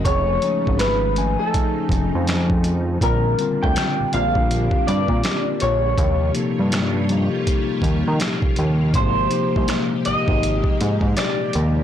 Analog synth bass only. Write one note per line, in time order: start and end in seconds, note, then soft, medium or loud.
0.06 0.39 F1 loud
0.68 1.37 G#1 medium
1.90 2.11 F1 medium
2.15 2.98 F2 loud
3.02 3.35 A#1 loud
3.64 3.76 D2 medium
4.00 4.05 A#1 soft
4.14 4.69 A#1 loud
4.88 5.08 G2 medium
5.09 5.22 A#2 medium
5.62 5.95 A#1 medium
5.98 6.31 D#2 loud
6.59 7.29 G2 medium
7.83 8.04 D#2 medium
8.08 8.19 D#3 loud
8.59 8.96 D#2 medium
8.95 9.28 G#1 loud
9.57 9.68 C2 medium
10.07 10.16 G#1 medium
10.29 10.62 G#1 medium
10.81 11.01 G#2 medium
11.02 11.15 G#2 medium
11.55 11.83 D#2 loud